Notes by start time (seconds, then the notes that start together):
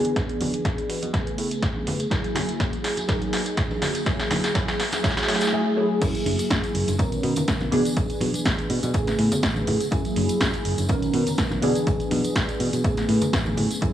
Already playing: E3 B3 D4 G#4
0.05 closed hi-hat, tambourine
0.15 B1, kick, snare, closed hi-hat, tambourine
0.29 closed hi-hat, tambourine
0.41 B2, open hi-hat, high conga, low conga
0.54 muted fingered electric bass stroke, closed hi-hat, tambourine
0.65 B1, kick, snare, closed hi-hat
0.78 closed hi-hat, tambourine
0.89 B2, open hi-hat
1.02 B2, closed hi-hat, tambourine, high conga
1.13 C#3 A3 B3 G#4, kick, snare, closed hi-hat
1.27 closed hi-hat, tambourine
1.38 A2, open hi-hat
1.51 muted fingered electric bass stroke, closed hi-hat, tambourine
1.62 kick, snare, closed hi-hat
1.76 tambourine, high conga
1.87 A2, open hi-hat, low conga
2.00 closed hi-hat, tambourine
2.10 F#2 F#3 A#3 E4 G#4, kick, snare, closed hi-hat, tambourine
2.24 closed hi-hat, tambourine
2.35 snare, open hi-hat, high conga, low conga
2.48 closed hi-hat, tambourine
2.60 F#2, kick, snare, closed hi-hat, tambourine
2.73 closed hi-hat, tambourine
2.84 F#1, snare, open hi-hat
2.97 F#1, closed hi-hat, tambourine, high conga
3.08 F#3 A#3 D#4 G#4, kick, snare, closed hi-hat, tambourine
3.22 closed hi-hat, tambourine
3.33 B2, snare, open hi-hat
3.46 closed hi-hat, tambourine
3.57 B1, kick, snare, closed hi-hat, tambourine
3.71 tambourine, high conga
3.82 B2, snare, open hi-hat, low conga
3.95 closed hi-hat, tambourine
4.06 B1 F#3 A#3 E4 G#4, kick, snare, closed hi-hat, tambourine
4.20 snare, closed hi-hat, tambourine
4.31 B2, snare, open hi-hat, high conga, low conga
4.44 snare, closed hi-hat, tambourine
4.54 F#3 A#3 E4 G#4, kick, snare, closed hi-hat, tambourine
4.68 snare, closed hi-hat, tambourine
4.80 B2, snare, open hi-hat
4.92 B2, snare, closed hi-hat, tambourine, high conga
5.03 F#3 A3 E4 G#4, kick, snare, closed hi-hat, tambourine
5.11 snare
5.17 snare, closed hi-hat, tambourine
5.23 snare
5.28 A2 F#3 A3 E4 G#4, snare, open hi-hat
5.35 snare
5.41 snare, closed hi-hat, tambourine
5.47 snare
5.52 F#3 A3 E4 G#4
5.76 F#3 A3 E4 G#4
6.01 F#2 F#3 A#3 E4 G#4, kick, closed hi-hat, crash, tambourine
6.15 closed hi-hat, tambourine
6.26 F#1, open hi-hat, high conga
6.39 muted fingered electric bass stroke, closed hi-hat, tambourine
6.50 F#2, kick, snare, closed hi-hat, tambourine
6.63 closed hi-hat, tambourine
6.75 F#1, open hi-hat
6.88 F#1, closed hi-hat, tambourine, high conga
6.98 B1 D#3 B3 C#4 A#4, kick, closed hi-hat, tambourine
7.12 closed hi-hat, tambourine
7.23 B2, open hi-hat
7.36 muted fingered electric bass stroke, closed hi-hat, tambourine, low conga
7.48 B1, kick, snare, closed hi-hat, tambourine
7.60 snare, tambourine, high conga, low conga
7.71 B2 E3 B3 D4 G#4, open hi-hat, low conga
7.85 closed hi-hat, tambourine
7.97 B1, kick, closed hi-hat, tambourine
8.10 closed hi-hat, tambourine
8.21 B2, open hi-hat, high conga
8.34 muted fingered electric bass stroke, closed hi-hat, tambourine
8.45 B1, kick, snare, closed hi-hat, tambourine
8.58 closed hi-hat, tambourine
8.70 B2, open hi-hat
8.83 B2, closed hi-hat, tambourine, high conga
8.93 A1 C#3 A3 B3 G#4, kick, closed hi-hat, tambourine
9.07 snare, closed hi-hat, tambourine
9.19 A2, open hi-hat
9.32 closed hi-hat, tambourine, low conga
9.43 A1, kick, snare, closed hi-hat, tambourine
9.56 tambourine, high conga, low conga
9.67 A2, open hi-hat, low conga
9.80 closed hi-hat, tambourine
9.91 F#2 F#3 A#3 E4 G#4, kick, closed hi-hat, tambourine
10.05 closed hi-hat, tambourine
10.16 F#1, open hi-hat, high conga
10.29 muted fingered electric bass stroke, closed hi-hat, tambourine
10.41 F#2, kick, snare, closed hi-hat, tambourine
10.53 closed hi-hat, tambourine
10.65 F#1, open hi-hat
10.78 F#1, closed hi-hat, tambourine, high conga
10.89 B1 D#3 B3 C#4 A#4, kick, closed hi-hat, tambourine
11.02 closed hi-hat, tambourine
11.14 B2, open hi-hat
11.27 muted fingered electric bass stroke, closed hi-hat, tambourine, low conga
11.38 B1, kick, snare, closed hi-hat, tambourine
11.51 snare, tambourine, high conga, low conga
11.62 B2 E3 B3 D4 G#4, open hi-hat, low conga
11.75 closed hi-hat, tambourine
11.87 B1, kick, closed hi-hat, tambourine
12.00 closed hi-hat, tambourine
12.11 B2, open hi-hat, high conga
12.24 muted fingered electric bass stroke, closed hi-hat, tambourine
12.35 B1, kick, snare, closed hi-hat, tambourine
12.49 closed hi-hat, tambourine
12.60 B2, open hi-hat
12.73 B2, closed hi-hat, tambourine, high conga
12.84 A1 C#3 A3 B3 G#4, kick, closed hi-hat, tambourine
12.97 snare, closed hi-hat, tambourine
13.09 A2, open hi-hat
13.22 closed hi-hat, tambourine, low conga
13.33 A1, kick, snare, closed hi-hat, tambourine
13.46 tambourine, high conga, low conga
13.57 A2, open hi-hat, low conga
13.71 closed hi-hat, tambourine
13.81 F#2 F#3 A#3 E4 G#4, kick, closed hi-hat, tambourine